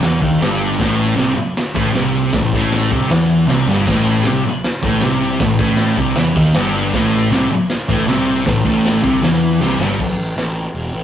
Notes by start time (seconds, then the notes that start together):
0.01 E2 E3, snare, open hi-hat
0.22 D#2 D#3, kick
0.40 G1 G2, snare, open hi-hat
0.79 A1 A2, kick, snare, open hi-hat
1.16 C2 C3, snare, open hi-hat
1.35 muted distorted electric guitar stroke, muted picked electric bass stroke
1.57 snare, open hi-hat
1.75 A1 A2, kick
1.94 C2 C3, snare, open hi-hat
2.33 A1 A2, kick, snare, open hi-hat
2.53 A1 A2, kick
2.72 snare, open hi-hat
2.91 C2 C3, kick
3.09 E2 E3, snare, open hi-hat
3.46 C2 C3, snare, open hi-hat
3.67 G1 G2, snare
3.86 A1 A2, kick, snare, open hi-hat, crash
4.24 C2 C3, snare, open hi-hat
4.45 muted picked electric bass stroke, muted distorted electric guitar stroke
4.64 snare, open hi-hat
4.83 A1 A2, kick
5.01 C2 C3, snare, open hi-hat
5.40 A1 A2, kick, snare, open hi-hat
5.59 A1 A2, kick
5.77 snare, open hi-hat
5.96 C2 C3, kick
6.16 E2 E3, snare, open hi-hat
6.35 D#2 D#3, kick
6.54 G1 G2, snare, open hi-hat
6.94 A1 A2, kick, snare, open hi-hat
7.30 C2 C3, snare, open hi-hat
7.49 muted picked electric bass stroke, muted distorted electric guitar stroke
7.69 snare, open hi-hat
7.88 A1 A2, kick
8.07 C2 C3, snare, open hi-hat
8.46 A1 A2, kick, snare, open hi-hat
8.64 A1 A2, kick
8.85 snare, open hi-hat
9.03 C2 C3, kick
9.22 E2 E3, snare, open hi-hat
9.61 C2 C3, snare
9.77 G1 G2, snare
9.99 A1, kick, crash
10.17 A1
10.36 A1, snare, open hi-hat
10.74 E1, open hi-hat
10.93 A1